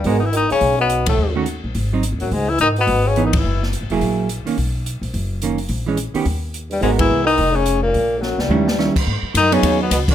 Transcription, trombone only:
X:1
M:4/4
L:1/16
Q:"Swing" 1/4=213
K:G#m
V:1 name="Trombone" clef=bass
G,,3/2 D,/2 E,2 D,2 C,4 B,,4 =A,,2- | =A,,2 z12 F,,2 | G,,2 E,2 D,2 B,,4 C,3 D, E,2- | E,2 z12 z2 |
z16 | z12 z2 =G,,2 | G,,2 E,4 D,4 C,4 A,,2- | A,,4 F,,2 =G,,8 z2 |
z4 D,2 C,4 B,,2 B,,2 D,2 |]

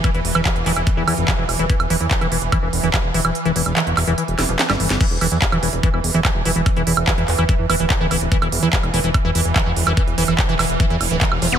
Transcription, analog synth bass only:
X:1
M:4/4
L:1/16
Q:1/4=145
K:C
V:1 name="Analog synth bass" clef=bass
z E,,, E,,, E,,, z E,,, E,,, E,,, z E,, E,, F,,, z E,,, E,,, E,,, | z E,,, E,,, E,, z E,,, E,,, E,,, z E,,, E,,, E,,, z E,,, E,,, E,,, | z E,,, E,,, E,,, z E,,, E,,, E,,, z E,,, E,,, E,,, z G,,, G,,, G,,, | z E,,, E,,, E,, z E,,, E,,, E,,, z E,,, E,,, E,,, z E,,, E,,, E,,, |
z E,,, E,,, E,,, z E,,, E,,, E,,, z E,, E,,, D,,, z D,,, D,,, D,,, | z E,,, E,,, E,, z E,,, E,,, E,,, z E,,, E,,, E,,, z E,,, E,,, E,,, | z E,,, E,,, E,,, z E,,, E,,, E,,, z E,, E,,, D,,, z E,,, E,,, E,,, |]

